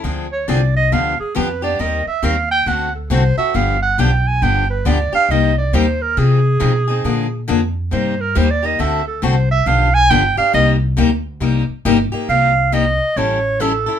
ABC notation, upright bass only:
X:1
M:4/4
L:1/8
Q:"Swing" 1/4=137
K:Cm
V:1 name="Upright bass" clef=bass
D,,2 C,,2 D,, z F,,2 | E,, z E,,2 D,,2 C,, z | G,,,2 =B,,,2 G,,,2 D,, z | C,,2 E,,2 C,2 =B,,2 |
B,,2 F,,2 G,,2 E,,2 | D,,2 C,,2 =B,,,2 G,,, z | C,,2 D,,2 C,, z G,,, z | C,,4 =A,,,4 |]